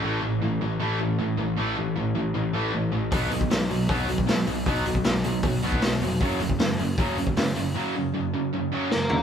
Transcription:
0.04 A1 A2 E3 A3
0.22 A1 A2 E3
0.42 A1 A2 E3
0.61 A1 A2 E3
0.80 A1 A2 E3 A3
0.99 A2 E3
1.19 A2 E3
1.38 A1 A2 E3
1.57 A1 A2 E3 A3
1.76 A1 A2 E3
1.96 A1 A2 E3
2.15 A1 A2 E3
2.34 A1 A2 E3
2.53 A1 A2 E3 A3
2.73 A1 A2 E3
2.92 A1 A2 E3
3.11 B1 B2 F#3 B3, kick, open hi-hat
3.31 B1 B2 F#3, open hi-hat
3.41 kick
3.50 B1 B2 F#3, snare, open hi-hat
3.70 B1 B2 F#3, open hi-hat
3.88 B1 B2 F#3 B3, kick, open hi-hat
4.08 B2 F#3, open hi-hat
4.18 kick
4.27 B2 F#3, snare, open hi-hat
4.47 B1 B2 F#3, open hi-hat
4.66 B1 B2 F#3 B3, kick, open hi-hat
4.85 B1 B2 F#3, open hi-hat
4.95 kick
5.04 B1 B2 F#3, snare, open hi-hat
5.24 B1 B2 F#3, open hi-hat
5.43 B1 B2 F#3, kick, open hi-hat
5.62 B1 B2 F#3 B3, open hi-hat
5.72 kick
5.82 B1 B2 F#3, snare, open hi-hat
6.01 F1 B2 F#3, open hi-hat
6.21 F#1 F#2 C#3 F#3, kick, open hi-hat
6.40 F#1 F#2 C#3, open hi-hat
6.50 kick
6.59 F#1 F#2 C#3, snare, open hi-hat
6.78 F#1 F#2 C#3, open hi-hat
6.98 F#1 F#2 C#3 F#3, kick, open hi-hat
7.18 F#2 C#3, open hi-hat
7.27 kick
7.37 F#2 C#3, snare, open hi-hat
7.56 F#1 F#2 C#3, open hi-hat
7.74 F#2 C#3 F#3
7.96 F#2 C#3
8.15 F#2 C#3
8.34 F#2 C#3
8.53 F#2 C#3
8.72 F#2 C#3 F#3
8.91 F#2 C#3 A#3 A#4, snare
9.09 F#2 C#3, floor tom

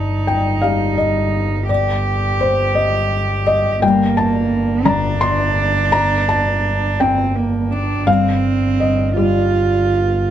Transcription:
Already playing: G1 G2 D#4 A5
0.27 G5
0.62 G3 F5
0.98 D#5
1.69 G4 D5
2.41 C5
2.75 D#5
3.47 D#5
3.82 G1 G2 A#3 G5
4.17 A5
4.85 D3 D4 A#5
5.21 C6
5.92 A#5
6.29 A5
7.00 C4 G5
7.35 A#3
7.71 D4
8.07 G1 G2 C4 F5
8.80 D#5
9.16 G3 F4 D5

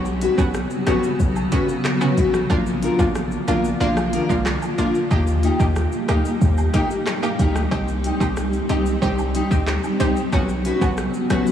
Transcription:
Already playing: B1 C#3 F#3 B3 F#4
0.05 shaker
0.21 C#4 F#4 B4, closed hi-hat, cabasa, shaker
0.38 B1 B3 C#4 F#4, kick, high woodblock, shaker
0.54 cross-stick, shaker
0.70 shaker
0.87 A#1 B3 C#4 F#4 B4, cross-stick, closed hi-hat, cabasa, high woodblock, shaker
1.03 shaker
1.20 B1, kick, shaker
1.36 high woodblock, shaker
1.52 B3 C#4 F#4 B4, kick, closed hi-hat, cabasa, shaker
1.68 muted steel-string acoustic guitar stroke, shaker
1.85 cross-stick, clap, shaker
2.01 B3 C#4 F#4, high woodblock, shaker
2.17 A#1 C#4 F#4 B4, kick, closed hi-hat, cabasa, shaker
2.34 cross-stick, shaker
2.50 A#1 D3 F3 A#3 D4 F4, kick, high woodblock, shaker
2.66 shaker
2.82 D4 F4 A#4, closed hi-hat, cabasa, shaker
2.99 A#1 A#3 D4 F4, kick, high woodblock, shaker
3.15 cross-stick, shaker
3.32 shaker
3.48 A#1 A#3 D4 F4 A#4, closed hi-hat, cabasa, high woodblock, shaker
3.65 shaker
3.80 A#1 A#3 D4 F4, shaker
3.97 cross-stick, high woodblock, shaker
4.13 D4 F4 A#4, closed hi-hat, cabasa, shaker
4.29 C2 A#3 D4 F4, kick, shaker
4.46 cross-stick, clap, shaker
4.62 muted steel-string acoustic guitar stroke, high woodblock, shaker
4.78 A#1 A#3 D4 F4 A#4, closed hi-hat, cabasa, shaker
4.95 shaker
5.11 D#2 G3 A#3 D#4 G4, kick, high woodblock, shaker
5.27 shaker
5.43 A#3 D#4 G4, closed hi-hat, cabasa, shaker
5.59 D#2 A#3 D#4 G4, kick, high woodblock, shaker
5.76 cross-stick, shaker
5.92 shaker
6.08 D2 A#3 D#4 G4, cross-stick, closed hi-hat, cabasa, high woodblock, shaker
6.25 shaker
6.41 D#2, kick, shaker
6.58 high woodblock, shaker
6.74 A#3 D#4 G4, kick, closed hi-hat, cabasa, shaker
6.90 muted steel-string acoustic guitar stroke, shaker
7.07 cross-stick, clap, shaker
7.22 A#3 D#4 G4, high woodblock, shaker
7.39 D2 A#3 D#4 G4, kick, closed hi-hat, cabasa, shaker
7.56 cross-stick, shaker
7.71 C2 G3 C4 D#4 G4, kick, high woodblock, shaker
7.88 shaker
8.04 C4 D#4 G4, closed hi-hat, cabasa, shaker
8.20 C2 C4 D#4 G4, kick, high woodblock, shaker
8.37 cross-stick, shaker
8.53 shaker
8.69 C2 C4 D#4 G4, closed hi-hat, cabasa, high woodblock, shaker
8.86 shaker
9.02 C2 C4 D#4 G4, kick, shaker
9.18 high woodblock, shaker
9.35 C4 D#4 G4, closed hi-hat, cabasa, shaker
9.51 D2 C4 D#4 G4, muted steel-string acoustic guitar stroke, kick, shaker
9.67 cross-stick, clap, shaker
9.84 muted steel-string acoustic guitar stroke, high woodblock, shaker
10.00 C2 C4 D#4 G4, closed hi-hat, cabasa, shaker
10.16 shaker
10.32 B1 C#3 F#3 B3 C#4 F#4, kick, high woodblock, shaker
10.49 shaker
10.65 C#4 F#4 B4, closed hi-hat, cabasa, shaker
10.81 B1 B3 C#4 F#4, kick, high woodblock, shaker
10.97 cross-stick, shaker
11.14 shaker
11.30 A#1 B3 C#4 F#4 B4, cross-stick, closed hi-hat, cabasa, high woodblock, shaker
11.47 shaker

